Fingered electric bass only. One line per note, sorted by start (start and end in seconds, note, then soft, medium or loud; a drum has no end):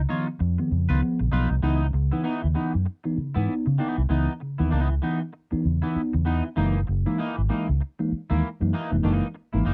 0.41 0.56 F2 loud
0.72 0.87 F2 medium
0.90 1.00 C#2 medium
1.21 1.31 A#1 medium
1.33 1.48 B1 loud
1.51 1.61 C2 medium
1.63 1.90 C#2 loud
1.94 2.10 C#2 medium
2.44 2.54 D#2 medium
2.75 2.85 F#2 medium
3.18 muted fingered electric bass stroke soft
3.36 3.47 G#2 medium
3.67 3.78 C#3 medium
3.98 4.09 C2 medium
4.10 4.26 C#2 loud
4.60 4.70 D#2 medium
4.73 4.99 C#2 medium
5.53 muted fingered electric bass stroke soft
5.66 5.81 E2 medium
5.96 muted fingered electric bass stroke soft
6.14 6.40 E2 medium
6.58 6.84 F#1 loud
6.89 7.04 F#1 medium
7.38 7.48 G#1 medium
7.69 7.79 C#2 medium
8.12 muted fingered electric bass stroke soft
8.31 8.41 D#2 medium
8.62 8.72 F#2 medium
8.92 9.02 F1 medium
9.04 9.20 F#1 loud
9.54 9.64 G#1 medium
9.67 9.74 F#1 medium